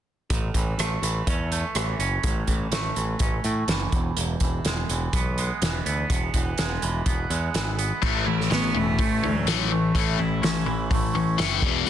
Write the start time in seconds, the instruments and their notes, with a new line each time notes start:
0.30 picked electric bass A1, clean electric guitar A2, kick, closed hi-hat
0.54 picked electric bass A1, clean electric guitar E3, kick, closed hi-hat
0.78 picked electric bass A1, clean electric guitar A3, cross-stick, closed hi-hat
1.02 picked electric bass A1, clean electric guitar E3, closed hi-hat
1.27 picked electric bass E2, clean electric guitar C#4, kick, closed hi-hat
1.52 clean electric guitar A3, closed hi-hat
1.75 picked electric bass A1, clean electric guitar E3, cross-stick, closed hi-hat
1.99 picked electric bass F#1, clean electric guitar C#4, closed hi-hat
2.23 picked electric bass A1, clean electric guitar A2, kick, closed hi-hat
2.47 picked electric bass A1, clean electric guitar E3, kick, closed hi-hat
2.72 picked electric bass A1, clean electric guitar A3, snare, closed hi-hat
2.96 picked electric bass A1, clean electric guitar E3, closed hi-hat
3.19 picked electric bass A1, clean electric guitar C#4, kick, closed hi-hat
3.44 picked electric bass A2, clean electric guitar A3, closed hi-hat
3.68 picked electric bass F#1, clean electric guitar E3, snare, closed hi-hat
3.92 picked electric bass E1, clean electric guitar E2, kick, closed hi-hat
4.17 picked electric bass E1, clean electric guitar E2, closed hi-hat
4.40 picked electric bass E1, clean electric guitar E3, kick, closed hi-hat
4.65 picked electric bass E1, clean electric guitar G#3, snare, closed hi-hat
4.89 picked electric bass E1, clean electric guitar E3, closed hi-hat
5.13 picked electric bass B1, clean electric guitar B3, kick, closed hi-hat
5.38 clean electric guitar G#3, closed hi-hat
5.62 picked electric bass E1, clean electric guitar E3, snare, closed hi-hat
5.86 picked electric bass D2, clean electric guitar B3, closed hi-hat
6.10 picked electric bass E1, clean electric guitar E2, kick, closed hi-hat
6.34 picked electric bass E1, clean electric guitar E3, kick, closed hi-hat
6.58 picked electric bass E1, clean electric guitar G#3, snare, closed hi-hat
6.82 picked electric bass E1, clean electric guitar E3, closed hi-hat
7.06 picked electric bass E1, clean electric guitar B3, kick, closed hi-hat
7.30 picked electric bass E2, clean electric guitar G#3, closed hi-hat
7.54 picked electric bass G#1, clean electric guitar E3, snare, closed hi-hat
7.79 clean electric guitar B3, closed hi-hat
8.02 picked electric bass A1, overdriven electric guitar A2 E3 A3, clean electric guitar A2, kick, crash
8.26 picked electric bass A1, overdriven electric guitar A2 E3, clean electric guitar E4
8.41 snare
8.50 picked electric bass A1, overdriven electric guitar A2 E3, cello B3, clean electric guitar C#4, snare, open hi-hat
8.74 picked electric bass E1, overdriven electric guitar A2 E3, clean electric guitar E3, cello A3
8.99 picked electric bass A1, overdriven electric guitar A2 E3, clean electric guitar A3, kick, open hi-hat
9.23 picked electric bass D2, overdriven electric guitar A2 E3, clean electric guitar C#4
9.35 cello F#3
9.47 picked electric bass A1, overdriven electric guitar A2 E3 A3, clean electric guitar E3, snare, open hi-hat
9.71 overdriven electric guitar A2 E3, cello E3, clean electric guitar A3
9.95 picked electric bass A1, clean electric guitar A2, overdriven electric guitar A2 E3 A3, kick, open hi-hat
10.19 picked electric bass A1, overdriven electric guitar A2 E3, clean electric guitar E4
10.42 picked electric bass A1, overdriven electric guitar A2 E3, clean electric guitar C#4, snare, open hi-hat
10.66 picked electric bass A1, overdriven electric guitar A2 E3, clean electric guitar E3
10.90 picked electric bass A1, overdriven electric guitar A2 E3, clean electric guitar A3, kick, open hi-hat
11.13 picked electric bass A1, overdriven electric guitar A2 E3, clean electric guitar C#4
11.37 picked electric bass F#1, overdriven electric guitar A2 E3 A3, clean electric guitar E3, snare, open hi-hat
11.62 picked electric bass E1, clean electric guitar E2, overdriven electric guitar E2 B2 E3, kick
11.85 picked electric bass E1, clean electric guitar E2, overdriven electric guitar E2, open hi-hat